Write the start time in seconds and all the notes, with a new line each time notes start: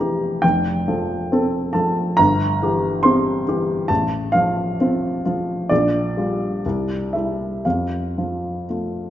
Already playing: F1 C4 A5 A#5
0.00 E3 G4
0.42 F1 G5
0.88 F3 A4
1.32 C4 A4
1.73 F3 A4 A5
2.17 G1 A#5
2.62 E3 G4
3.03 C4 G4 C6
3.48 E3 G4
3.88 A1 A5
4.32 F3 F4 F5
4.81 C4 F4
5.25 F3 F4
5.69 A#1 D5
6.17 G3 F4
6.66 C2
7.13 G3 E4 E5
7.65 F2 F5
8.18 F3 F4
8.70 A3 F4